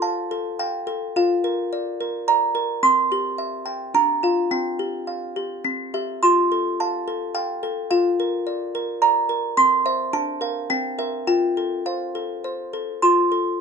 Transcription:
Already playing: F4 A4
0.02 F5 A5
0.31 A4
0.59 F5 G5
0.87 A4
1.16 F4 F5
1.44 A#4
1.73 D5
2.00 A#4
2.28 D5 A#5
2.55 A#4
2.83 C4 C6
3.12 G4
3.38 E5
3.66 G5
3.94 D4 A#5
4.23 F4 F5
4.51 C4 G5
4.79 G4
5.07 F5
5.36 G4
5.64 C4
5.94 G4 E5
6.23 F4 C6
6.52 A4
6.80 F5 A5
7.08 A4
7.35 F5 G5
7.63 A4
7.91 F4 F5
8.20 A#4
8.47 D5
8.75 A#4
9.02 D5 A#5
9.29 A#4
9.57 C4 C6
9.86 C5 E5
10.13 D4 A5
10.41 A#4 F5
10.70 C4 G5
10.99 A#4 E5
11.27 F4 G5
11.57 A4
11.86 C5 F5
12.15 A4
12.44 C5
12.73 A4
13.02 F4 C6
13.32 A4

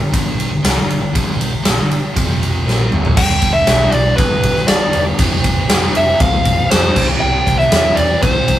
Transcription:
0.00 G1 D3
0.11 G1 G2 D3 G3, kick, ride
0.40 ride
0.51 G1 G2 D3
0.62 C2 C3 G3, snare, ride
0.75 G1 G2 D3
0.90 ride
1.00 G1 G2 D3
1.13 G1 G2 D3 G3, kick, ride
1.41 ride
1.51 G1 G2 D3
1.63 A#1 A#2 F3, snare, ride
1.75 G1 G2 D3
1.91 ride
2.14 F1 F2 C3 F3, kick, ride
2.43 ride
2.65 A#1 A#2 F3 A#3, snare
2.90 G1 G2 D3, mid tom
3.03 A#1 A#2 F3, floor tom
3.16 G1 G2 D3 G3 G5, kick, crash
3.42 G1, kick, ride
3.53 E5
3.67 B1, snare, ride
3.90 B1 D5, ride
4.17 G1 B4, kick, ride
4.43 G1, kick, ride
4.56 snare
4.68 G1 D5, snare, ride
4.93 E1, ride
5.18 F1 F2 C3 F3, kick, ride
5.44 F1, kick, ride
5.69 F1, snare, ride
5.95 F1 E5, ride
6.20 C2 F5, kick, ride
6.45 F1, kick, ride
6.71 F2 C5, snare, ride
6.94 C2 C3 G3 C4, kick, crash
7.20 C2 G5
7.47 C2, kick, ride
7.59 E5, snare
7.72 E2, snare, ride
7.96 E2 D5, ride
8.22 C2 C5, kick, ride
8.48 C2, kick, ride

